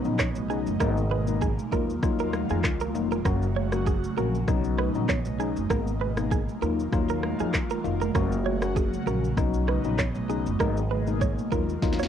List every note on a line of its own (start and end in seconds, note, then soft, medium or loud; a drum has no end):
0.00 0.79 C#3 medium
0.00 0.76 F#3 medium
0.00 0.79 B3 medium
0.00 1.70 D#4 medium
0.05 0.32 A#1 medium
0.05 0.24 F#3 medium
0.05 0.24 B3 medium
0.05 0.24 C#4 medium
0.05 0.24 D#4 medium
0.05 shaker soft
0.19 0.29 C#5 medium
0.19 kick medium
0.19 cross-stick medium
0.19 clap medium
0.19 shaker medium
0.35 0.62 B1 medium
0.35 high conga medium
0.35 shaker medium
0.49 0.70 F#3 medium
0.49 0.70 B3 medium
0.49 0.70 C#4 medium
0.49 0.71 D#4 medium
0.49 0.60 G#4 medium
0.49 shaker medium
0.67 0.78 F#1 medium
0.67 high conga medium
0.67 shaker medium
0.80 1.54 G#1 loud
0.80 1.71 B2 medium
0.80 1.01 G#3 medium
0.80 1.71 G#3 medium
0.80 1.01 A#3 medium
0.80 4.44 A#3 medium
0.80 1.01 B3 medium
0.80 1.01 D#4 loud
0.80 0.90 A#4 loud
0.80 kick loud
0.80 cross-stick loud
0.80 low conga medium
0.80 shaker medium
0.97 shaker medium
1.11 1.21 B4 medium
1.11 high conga medium
1.27 1.46 G#3 medium
1.27 1.46 A#3 medium
1.27 1.46 B3 medium
1.27 1.46 D#4 medium
1.27 shaker medium
1.41 1.51 G#4 medium
1.41 kick loud
1.41 low conga medium
1.41 shaker medium
1.59 high conga medium
1.59 shaker soft
1.72 1.99 D#2 loud
1.72 3.24 D#3 medium
1.72 1.93 F#3 medium
1.72 3.24 F#3 medium
1.72 1.93 A#3 medium
1.72 1.93 D#4 medium
1.72 3.24 F4 medium
1.72 1.93 F4 medium
1.72 1.82 A#4 medium
1.72 kick medium
1.72 low conga medium
1.72 shaker soft
1.90 shaker soft
2.02 2.44 D#2 loud
2.02 2.46 F#3 medium
2.02 2.46 A#3 medium
2.02 2.46 D#4 medium
2.02 2.46 F4 loud
2.02 kick loud
2.02 cross-stick medium
2.02 low conga medium
2.02 shaker medium
2.19 2.28 A#4 medium
2.19 shaker medium
2.33 cross-stick medium
2.33 high conga medium
2.33 shaker soft
2.49 2.62 F2 medium
2.49 2.69 F#3 medium
2.49 2.69 A#3 medium
2.49 2.69 D#4 medium
2.49 2.69 F4 medium
2.49 2.58 G#4 medium
2.49 shaker soft
2.64 2.91 C#2 medium
2.64 kick medium
2.64 cross-stick medium
2.64 clap medium
2.64 shaker medium
2.80 2.89 A#4 medium
2.80 high conga medium
2.80 shaker medium
2.94 3.21 F1 medium
2.94 3.15 F#3 medium
2.94 3.15 A#3 medium
2.94 3.15 D#4 medium
2.94 3.15 F4 medium
2.94 shaker medium
3.12 3.20 A#4 medium
3.12 high conga medium
3.12 shaker medium
3.25 3.99 F#1 loud
3.25 5.68 C#3 medium
3.25 3.46 F#3 loud
3.25 5.68 F#3 medium
3.25 3.46 A#3 medium
3.25 3.46 C#4 medium
3.25 4.46 F#4 medium
3.25 3.46 F#4 loud
3.25 3.35 A#4 loud
3.25 kick loud
3.25 cross-stick loud
3.25 low conga medium
3.25 shaker medium
3.42 shaker medium
3.56 3.66 C#5 medium
3.56 high conga medium
3.72 3.91 F#3 medium
3.72 3.91 A#3 medium
3.72 3.91 C#4 medium
3.72 3.91 F#4 medium
3.72 cross-stick medium
3.72 shaker medium
3.86 3.96 G#4 medium
3.86 kick loud
3.86 low conga medium
3.86 shaker medium
4.04 high conga medium
4.04 shaker medium
4.17 4.44 A#1 medium
4.17 4.38 F#3 medium
4.17 4.38 A#3 medium
4.17 4.38 C#4 medium
4.17 4.38 F#4 medium
4.17 4.27 A#4 medium
4.17 low conga medium
4.17 shaker soft
4.35 shaker soft
4.47 4.89 B1 loud
4.47 4.91 F#3 medium
4.47 4.91 B3 medium
4.47 5.69 B3 medium
4.47 4.91 C#4 medium
4.47 6.60 D#4 medium
4.47 4.91 D#4 loud
4.47 kick loud
4.47 cross-stick medium
4.47 low conga medium
4.47 shaker medium
4.64 shaker medium
4.78 4.88 B4 medium
4.78 cross-stick medium
4.78 high conga medium
4.94 5.22 A#1 medium
4.94 5.13 F#3 medium
4.94 5.13 B3 medium
4.94 5.14 C#4 medium
4.94 5.14 D#4 medium
4.94 shaker soft
5.09 5.19 C#5 medium
5.09 kick medium
5.09 cross-stick medium
5.09 clap medium
5.09 shaker medium
5.25 5.52 B1 medium
5.25 high conga medium
5.25 shaker medium
5.39 5.60 F#3 medium
5.39 5.60 B3 medium
5.39 5.60 C#4 medium
5.39 5.60 D#4 medium
5.39 5.49 G#4 medium
5.39 shaker medium
5.56 5.68 F#1 medium
5.56 high conga medium
5.56 shaker medium
5.70 6.44 G#1 loud
5.70 6.61 B2 medium
5.70 5.91 G#3 medium
5.70 6.61 G#3 medium
5.70 5.91 A#3 medium
5.70 9.34 A#3 medium
5.70 5.91 B3 medium
5.70 5.91 D#4 loud
5.70 5.80 A#4 loud
5.70 kick loud
5.70 cross-stick loud
5.70 low conga medium
5.70 shaker medium
5.87 shaker medium
6.01 6.11 B4 medium
6.01 high conga medium
6.17 6.36 G#3 medium
6.17 6.36 A#3 medium
6.17 6.36 B3 medium
6.17 6.36 D#4 medium
6.17 cross-stick medium
6.17 shaker medium
6.31 6.41 G#4 medium
6.31 kick loud
6.31 low conga medium
6.31 shaker medium
6.49 high conga medium
6.49 shaker soft
6.62 6.88 D#2 loud
6.62 8.13 D#3 medium
6.62 6.82 F#3 medium
6.62 10.56 F#3 medium
6.62 6.83 A#3 medium
6.62 6.83 D#4 medium
6.62 8.13 F4 medium
6.62 6.83 F4 medium
6.62 6.72 A#4 medium
6.62 low conga medium
6.62 shaker soft
6.79 shaker soft
6.92 7.34 D#2 loud
6.92 7.36 F#3 medium
6.92 7.36 A#3 medium
6.92 7.36 D#4 medium
6.92 7.36 F4 loud
6.92 kick loud
6.92 cross-stick medium
6.92 low conga medium
6.92 shaker medium
7.09 7.18 A#4 medium
7.09 shaker medium
7.23 cross-stick medium
7.23 high conga medium
7.39 7.52 F2 medium
7.39 7.58 F#3 medium
7.39 7.58 A#3 medium
7.39 7.59 D#4 medium
7.39 7.59 F4 medium
7.39 7.48 G#4 medium
7.39 shaker soft
7.54 kick medium
7.54 cross-stick medium
7.54 clap medium
7.54 shaker medium
7.70 7.79 A#4 medium
7.70 high conga medium
7.70 shaker medium
7.84 8.11 F1 medium
7.84 8.05 F#3 medium
7.84 8.05 A#3 medium
7.84 8.05 D#4 medium
7.84 8.05 F4 medium
7.84 shaker medium
8.01 8.09 A#4 medium
8.01 high conga medium
8.01 shaker medium
8.15 8.89 F#1 loud
8.15 10.57 C#3 medium
8.15 8.36 F#3 medium
8.15 8.36 A#3 medium
8.15 8.36 C#4 medium
8.15 9.36 F#4 medium
8.15 8.36 F#4 loud
8.15 8.25 A#4 loud
8.15 kick loud
8.15 cross-stick loud
8.15 low conga medium
8.15 shaker medium
8.32 shaker medium
8.46 8.55 C#5 medium
8.46 high conga medium
8.62 8.81 F#3 medium
8.62 8.81 A#3 medium
8.62 8.81 C#4 medium
8.62 8.81 F#4 medium
8.62 cross-stick loud
8.62 shaker medium
8.76 8.86 G#4 medium
8.76 kick loud
8.76 low conga medium
8.76 shaker medium
8.94 high conga medium
8.94 shaker soft
9.06 9.33 A#1 medium
9.06 9.27 F#3 medium
9.06 9.27 A#3 medium
9.06 9.28 C#4 medium
9.06 9.28 F#4 medium
9.06 9.17 A#4 medium
9.06 low conga medium
9.06 shaker soft
9.24 shaker soft
9.37 9.79 B1 loud
9.37 9.81 F#3 medium
9.37 9.81 B3 medium
9.37 10.59 B3 medium
9.37 9.81 C#4 medium
9.37 11.50 D#4 medium
9.37 9.81 D#4 loud
9.37 kick loud
9.37 cross-stick medium
9.37 low conga medium
9.37 shaker medium
9.54 shaker medium
9.68 9.78 B4 medium
9.68 cross-stick medium
9.68 high conga medium
9.84 10.11 A#1 medium
9.84 10.03 F#3 medium
9.84 10.03 B3 medium
9.84 10.03 C#4 medium
9.84 10.04 D#4 medium
9.84 shaker soft
9.99 10.09 C#5 medium
9.99 kick medium
9.99 cross-stick medium
9.99 clap medium
9.99 shaker medium
10.15 10.42 B1 medium
10.15 high conga medium
10.15 shaker medium
10.29 10.50 F#3 medium
10.29 10.50 B3 medium
10.29 10.50 C#4 medium
10.29 10.50 D#4 medium
10.29 10.39 G#4 medium
10.29 shaker medium
10.46 10.58 F#1 medium
10.46 high conga medium
10.46 shaker medium
10.60 11.34 G#1 loud
10.60 11.51 B2 medium
10.60 10.80 G#3 loud
10.60 11.51 G#3 medium
10.60 10.80 A#3 medium
10.60 12.08 A#3 medium
10.60 10.81 B3 medium
10.60 10.81 D#4 loud
10.60 10.70 A#4 medium
10.60 kick loud
10.60 cross-stick loud
10.60 low conga medium
10.60 shaker medium
10.77 shaker medium
10.91 11.00 B4 medium
10.91 high conga medium
11.07 11.26 G#3 medium
11.07 11.26 A#3 medium
11.07 11.26 B3 medium
11.07 11.26 D#4 medium
11.07 shaker medium
11.21 11.31 C#5 medium
11.21 kick loud
11.21 low conga medium
11.21 shaker medium
11.38 high conga medium
11.38 shaker soft
11.51 11.78 D#2 medium
11.51 12.08 D#3 medium
11.51 11.72 F#3 medium
11.51 12.08 F#3 medium
11.51 11.72 A#3 medium
11.51 11.72 D#4 medium
11.51 12.08 F4 medium
11.51 11.73 F4 medium
11.51 11.62 A#4 medium
11.51 kick medium
11.51 low conga medium
11.51 shaker soft
11.69 shaker soft
11.82 12.08 D#2 loud
11.82 12.08 F#3 medium
11.82 12.08 A#3 medium
11.82 12.08 D#4 medium
11.82 12.08 F4 loud
11.82 kick loud
11.82 snare medium
11.82 low conga medium
11.82 shaker medium
11.93 snare medium
11.99 12.07 C#5 medium
11.99 shaker medium
12.03 snare medium